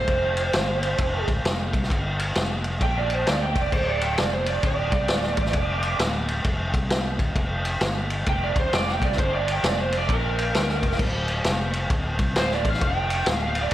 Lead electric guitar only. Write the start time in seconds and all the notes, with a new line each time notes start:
Already playing: C5
2.83 G5
2.98 D5
3.13 C5
3.30 D5
3.42 G5
3.61 D5
3.74 C5
3.89 D5
4.02 G5
4.18 D5
4.32 C5
4.48 D5
4.65 D5
8.30 G5
8.44 D5
8.60 C5
8.74 D5
8.89 G5
9.04 D5
9.20 C5
9.34 D5
9.52 G5
9.66 D5
9.81 C5
9.97 D5
10.12 A#4
12.39 C5
12.53 D5
12.69 F5
12.87 G5
13.32 F5
13.47 F5
13.62 D5